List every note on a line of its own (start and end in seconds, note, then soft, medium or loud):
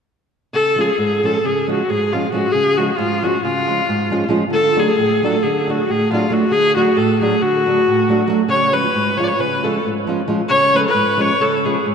0.53 0.88 C#3 medium
0.53 0.82 A4 loud
0.76 0.90 F3 soft
0.76 0.91 G#3 soft
0.76 0.91 C#4 soft
0.76 0.91 F4 medium
0.80 1.27 G#4 medium
0.98 1.33 G#2 medium
1.23 1.36 F3 medium
1.23 1.36 G#3 medium
1.23 1.37 C#4 medium
1.23 1.37 F4 medium
1.23 1.47 A4 medium
1.45 1.79 C#3 medium
1.45 1.70 G#4 medium
1.67 1.81 F3 soft
1.67 1.81 G#3 soft
1.67 1.81 C#4 soft
1.67 1.82 F4 medium
1.67 1.91 F#4 medium
1.90 2.22 G#2 medium
1.90 2.14 G#4 medium
2.13 2.25 F3 medium
2.13 2.25 G#3 soft
2.13 2.26 C#4 soft
2.13 2.31 F4 medium
2.13 2.26 F4 medium
2.32 2.45 F3 medium
2.32 2.45 G#3 medium
2.32 2.46 C#4 medium
2.32 2.46 F4 medium
2.32 2.53 F#4 medium
2.52 2.88 C#3 medium
2.52 2.78 G#4 loud
2.77 2.90 F3 medium
2.77 2.91 G#3 medium
2.77 2.91 C#4 soft
2.77 2.91 F4 medium
2.77 2.98 F#4 medium
2.96 3.33 G#2 medium
2.96 3.25 F4 medium
3.22 3.35 F3 medium
3.22 3.36 G#3 medium
3.22 3.36 C#4 medium
3.22 3.36 F4 medium
3.22 3.43 F#4 medium
3.44 3.79 C#3 medium
3.44 4.28 F4 medium
3.68 3.81 F3 soft
3.68 3.81 G#3 soft
3.68 3.81 C#4 soft
3.68 3.82 F4 soft
3.89 4.21 G#2 medium
4.10 4.23 F3 medium
4.10 4.24 G#3 medium
4.10 4.24 C#4 medium
4.10 4.24 F4 medium
4.29 4.42 F3 medium
4.29 4.43 G#3 medium
4.29 4.43 C#4 medium
4.29 4.43 F4 medium
4.50 4.85 D3 medium
4.50 4.81 A4 loud
4.76 4.89 F#3 medium
4.76 4.89 A3 soft
4.76 4.89 D4 medium
4.76 4.90 F#4 medium
4.76 5.26 G#4 medium
4.98 5.32 A2 medium
5.23 5.35 F#3 medium
5.23 5.35 A3 soft
5.23 5.36 D4 medium
5.23 5.36 F#4 medium
5.23 5.44 A4 medium
5.43 5.78 D3 medium
5.43 5.72 G#4 medium
5.68 5.80 F#3 soft
5.68 5.80 A3 soft
5.68 5.81 D4 medium
5.68 5.81 F#4 medium
5.68 5.92 F#4 medium
5.89 6.21 A2 medium
5.89 6.11 G#4 medium
6.12 6.23 F#3 medium
6.12 6.24 A3 medium
6.12 6.24 D4 medium
6.12 6.34 F4 medium
6.12 6.25 F#4 medium
6.30 6.42 F#3 medium
6.30 6.43 A3 medium
6.30 6.44 D4 medium
6.30 6.44 F#4 medium
6.30 6.53 F#4 medium
6.51 6.85 D3 medium
6.51 6.75 G#4 loud
6.75 6.88 F#3 medium
6.75 6.88 A3 soft
6.75 6.88 D4 soft
6.75 6.98 F#4 medium
6.75 6.88 F#4 medium
6.96 7.31 A2 medium
6.96 7.21 A4 medium
7.21 7.34 F#3 medium
7.21 7.34 A3 soft
7.21 7.34 D4 soft
7.21 7.34 F#4 medium
7.21 7.43 G#4 medium
7.42 7.76 D3 medium
7.42 8.30 F#4 medium
7.66 7.79 F#3 medium
7.66 7.79 A3 soft
7.66 7.79 D4 soft
7.66 7.80 F#4 medium
7.88 8.20 A2 medium
8.09 8.22 F#3 medium
8.09 8.22 A3 medium
8.09 8.22 D4 medium
8.09 8.23 F#4 medium
8.27 8.41 F#3 medium
8.27 8.41 A3 medium
8.27 8.41 D4 medium
8.27 8.42 F#4 medium
8.48 8.83 C#3 medium
8.48 8.75 C#5 loud
8.72 8.86 F3 medium
8.72 8.86 G#3 soft
8.72 8.86 C#4 soft
8.72 8.87 F4 soft
8.72 9.19 B4 medium
8.94 9.29 G#2 medium
9.17 9.31 F3 medium
9.17 9.32 G#3 soft
9.17 9.32 C#4 soft
9.17 9.32 F4 medium
9.17 9.25 C#5 medium
9.24 9.41 C#5 medium
9.24 9.29 D5 medium
9.39 9.74 C#3 medium
9.39 9.65 B4 medium
9.63 9.77 F3 soft
9.63 9.77 G#3 soft
9.63 9.78 C#4 soft
9.63 9.78 F4 medium
9.63 9.85 A4 medium
9.85 10.18 G#2 soft
10.07 10.20 F3 medium
10.07 10.21 G#3 medium
10.07 10.21 C#4 medium
10.07 10.21 F4 medium
10.28 10.40 F3 medium
10.28 10.40 G#3 medium
10.28 10.41 C#4 medium
10.28 10.41 F4 medium
10.49 10.84 C#3 medium
10.49 10.77 C#5 loud
10.73 10.86 F3 medium
10.73 10.86 G#3 medium
10.73 10.86 C#4 soft
10.73 10.87 F4 medium
10.73 10.80 B4 medium
10.78 10.90 A4 medium
10.88 11.22 B4 medium
10.94 11.28 G#2 medium
11.17 11.31 F3 medium
11.17 11.31 G#3 medium
11.17 11.31 C#4 medium
11.17 11.32 F4 medium
11.17 11.43 C#5 medium
11.40 11.74 C#3 medium
11.40 11.67 A4 medium
11.65 11.77 F3 medium
11.65 11.77 G#3 soft
11.65 11.78 C#4 soft
11.65 11.78 F4 medium
11.65 11.85 G#4 medium
11.86 11.95 G#2 medium